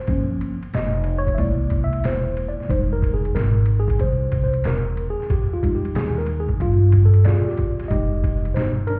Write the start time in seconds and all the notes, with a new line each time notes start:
Already playing: C5
0.07 G1 F3 A#3 C#4, kick, ride
0.41 ride
0.63 ride
0.74 F1 D#5, snare, hi-hat pedal, ride
1.04 ride
1.18 C#5
1.27 kick, ride
1.34 G#3 E5, kick, ride
1.39 C2 A#3 E4 D5
1.70 kick, ride
1.84 E5
1.93 ride
2.04 E1 C5, snare, hi-hat pedal, ride
2.37 ride
2.49 D5
2.59 muted upright bass stroke, snare
2.68 F1 G3 G#3 D#4 C5, kick, ride
2.93 A#4
3.02 kick, ride
3.14 G#4
3.25 ride
3.35 G#1 A#4, snare, hi-hat pedal, ride
3.66 ride
3.80 G#4
3.88 kick, ride
3.99 C2 C5, kick, ride
4.32 kick, ride
4.44 C5
4.54 ride
4.64 E1 A#4, snare, hi-hat pedal, ride
4.97 ride
5.10 G#4
5.19 muted upright bass stroke, snare
5.30 F2 G4, kick, ride
5.53 F4
5.63 G3 G#3 D#4, kick, ride
5.75 G4
5.85 ride
5.95 D#2 G#4, snare, hi-hat pedal, ride
6.17 A#4, snare
6.26 ride
6.40 G#4
6.49 muted upright bass stroke, kick
6.60 G2 F4, kick, ride
6.92 kick, ride
7.05 A4
7.14 ride
7.24 E2 F4 G#4 D5, snare, hi-hat pedal, ride
7.48 G4, snare
7.57 kick, ride
7.79 muted upright bass stroke, snare, ride
7.88 F1 G3 G#3 D#4 G4 D#5, kick, ride
8.24 kick, ride
8.45 ride
8.54 G1 D#4 C5, snare, hi-hat pedal, ride
8.87 D4 A#4, ride